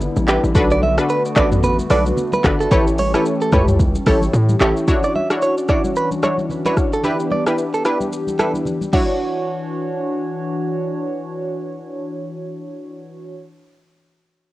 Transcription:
Already playing: analog synth pad D3 G3 B3 E4
0.01 low conga, shaker
0.16 808-style bass A1, high conga, shaker
0.28 synth pluck D4 E4 G4 B4, clean electric guitar G4, clap, shaker
0.44 808-style bass A1, shaker
0.54 808-style bass B1, analog synth pad A3 B3 F#4, synth pluck D4 F#4 A4 B4, kick, low conga, shaker
0.71 clean electric guitar D5, shaker
0.83 clean electric guitar E5, high conga
0.97 synth pluck D4 F#4 A4 B4, cross-stick, shaker
1.09 clean electric guitar B4, shaker
1.25 shaker
1.36 808-style bass A1, synth pluck D4 F#4 A4 B4, clean electric guitar D5, kick, cross-stick, clap, shaker
1.52 mid tom, high conga, shaker
1.63 clean electric guitar B4, low conga, shaker
1.79 high conga, shaker
1.90 808-style bass B1, synth pluck D4 F#4 A4 B4, clean electric guitar D5, cross-stick, open hi-hat, high conga, shaker
2.05 high conga, shaker
2.17 low conga, shaker
2.33 clean electric guitar B4, high conga, shaker
2.44 808-style bass G1, synth pluck D4 F#4 A4 B4, kick, cross-stick, clap, shaker
2.60 clean electric guitar A4, shaker
2.71 808-style bass A1, analog synth pad E3 C#4 G4, synth pluck E4 G4 A4 C#5, clean electric guitar B4, kick, low conga, shaker
2.87 shaker
2.98 clean electric guitar C#5, open hi-hat, high conga, shaker
3.14 synth pluck E4 G4 A4 C#5, clean electric guitar B4, cross-stick, shaker
3.25 shaker
3.41 clean electric guitar A4, shaker
3.52 808-style bass C#2, synth pluck E4 G4 A4 C#5, clean electric guitar B4, kick, cross-stick, mid tom, shaker
3.68 mid tom, high conga, shaker
3.80 kick, low conga, shaker
3.95 high conga, shaker
4.06 808-style bass A1, synth pluck E4 G4 A4 C#5, clean electric guitar A4, kick, cross-stick, open hi-hat, high conga
4.22 high conga, shaker
4.33 808-style bass A2, low conga, shaker
4.49 high conga, shaker
4.60 808-style bass A1, synth pluck E4 G4 A4 C#5, clean electric guitar G4, cross-stick, clap, shaker
4.77 shaker
4.87 analog synth pad E3 C#4 D4 F#4, synth pluck D4 E4 F#4 C#5, kick, low conga, shaker
5.03 clean electric guitar D5, shaker
5.16 clean electric guitar E5, high conga
5.30 synth pluck D4 E4 F#4 C#5, cross-stick, shaker
5.42 clean electric guitar C#5, shaker
5.58 shaker
5.68 synth pluck D4 E4 F#4 C#5, clean electric guitar D5, kick, cross-stick, shaker
5.84 high conga, shaker
5.96 clean electric guitar B4, shaker
6.11 high conga, shaker
6.23 synth pluck D4 E4 F#4 C#5, clean electric guitar C#5, cross-stick, high conga, shaker
6.38 high conga, shaker
6.49 low conga, shaker
6.65 synth pluck D4 E4 F#4 C#5, clean electric guitar B4, high conga, shaker
6.77 kick, cross-stick, shaker
6.93 clean electric guitar A4, shaker
7.03 analog synth pad B3 G4, synth pluck D4 E4 G4 B4, clean electric guitar B4, low conga, shaker
7.20 shaker
7.31 clean electric guitar D5, high conga
7.47 synth pluck D4 E4 G4 B4, clean electric guitar B4, cross-stick, shaker
7.58 shaker
7.74 clean electric guitar A4, shaker
7.85 synth pluck D4 E4 G4 B4, clean electric guitar B4, cross-stick, shaker
8.01 high conga, shaker
8.13 shaker
8.27 high conga, shaker
8.39 synth pluck D4 E4 G4 B4, clean electric guitar A4, cross-stick, high conga, shaker
8.54 high conga, shaker
8.65 high tom, low conga, shaker
8.81 high conga, shaker
8.93 analog synth pad E3 D4 F#4 C#5, synth pluck D4 E4 F#4 C#5, clean electric guitar F#4, kick, crash, high conga

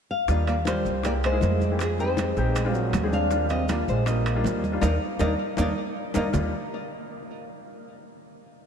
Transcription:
0.11 nylon-string guitar F5
0.28 upright bass D#2, upright piano G3 A#3 D4 F4, trombone A#3, nylon-string guitar D#5, high bongo, high conga, maracas
0.47 trombone A#3, nylon-string guitar D5, high bongo, high conga, high timbale, maracas
0.65 upright piano G3 A#3 D4 F4, trombone G3, nylon-string guitar C5, high bongo, high conga, high timbale, low timbale, maracas
0.85 upright bass C2, high bongo, high conga, maracas
1.03 upright piano G#3 A#3 E4 G4, trombone A#3, nylon-string guitar D5, high bongo, high conga, high timbale, maracas
1.23 trombone G#3, nylon-string guitar C5, high conga, high timbale, maracas
1.32 upright piano G#3 A#3 E4 G#4
1.41 upright bass F2, high bongo, low bongo, high conga, low timbale, maracas
1.60 high bongo, high conga, maracas
1.71 upright piano G#3 A#3 E4 G4
1.79 trombone F3, nylon-string guitar G#4, high bongo, high conga, high timbale, maracas
1.98 upright piano G#3 C4 D#4 G4, trombone G#3, nylon-string guitar C5, high bongo, high conga, maracas
2.17 high bongo, high conga, high timbale, low timbale, maracas
2.37 upright bass A#1, upright piano G#3 C4 D#4 G4, high bongo, high conga, maracas
2.56 high bongo, high conga, high timbale, maracas
2.64 upright piano G#3 C4 D4 F4
2.75 trombone F#3, high conga, maracas
2.80 nylon-string guitar A#4
2.93 upright bass D#2, high bongo, low bongo, high conga, high timbale, low timbale, maracas
3.03 upright piano G#3 C4 D4 G#4
3.12 trombone D4, nylon-string guitar F5, high bongo, high conga, maracas
3.31 upright piano G3 A#3 D4 F4, high bongo, high conga, maracas
3.50 trombone C4, nylon-string guitar D#5, high bongo, high conga, high timbale, maracas
3.69 upright piano G3 A#3 D4 F4, trombone A#3, nylon-string guitar D5, high bongo, high conga, high timbale, low timbale, maracas
3.88 upright bass A#1, trombone G#3, nylon-string guitar C5, high bongo, high conga, maracas
4.06 upright piano G3 A#3 D4 F4, trombone A#3, nylon-string guitar D#5, high bongo, high conga, high timbale, maracas
4.26 high conga, high timbale, maracas
4.35 upright piano G3 A#3 D4 F4
4.44 upright bass D#2, high bongo, low bongo, high conga, low timbale, maracas
4.64 high bongo, high conga, maracas
4.72 upright piano G3 A#3 D4 F4
4.81 upright bass D#2, upright piano A#3 D4 D#4, trombone A#3, nylon-string guitar A#4 D5 D#5, high bongo, high conga, high timbale, maracas
5.19 upright bass D#2, trombone A#3, upright piano A#3 D4 D#4, nylon-string guitar A#4 D5 D#5, high bongo, high conga, high timbale, maracas
5.57 upright bass D#2, upright piano A#3 D4 D#4, trombone A#3, nylon-string guitar A#4 D5 D#5, high bongo, high conga, high timbale, maracas
6.14 upright bass D#2, upright piano A#3 D4 D#4, trombone A#3, nylon-string guitar A#4 D5 D#5, high bongo, high conga, high timbale, maracas
6.33 upright bass D#2, upright piano G3 A#3 D4 F4, low bongo, low conga, low timbale, maracas

